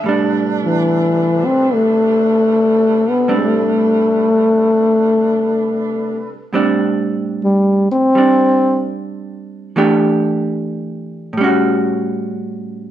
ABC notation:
X:1
M:4/4
L:1/8
Q:"Swing" 1/4=74
K:Am
V:1 name="Saxophone section"
[C,G,DAB]8- | [C,G,DAB]8 | z8 | z8 |]
V:2 name="Hollow-body jazz guitar"
[A,,G,D]8 | [A,,G,CD]8 | [A,,G,CD]4 [G,CD]4 | [E,A,DG]4 [A,,G,^C^F]4 |]
V:3 name="Trombone"
z E,2 C A,3 B, | A,6- A, z | z2 G, C3 z2 | z8 |]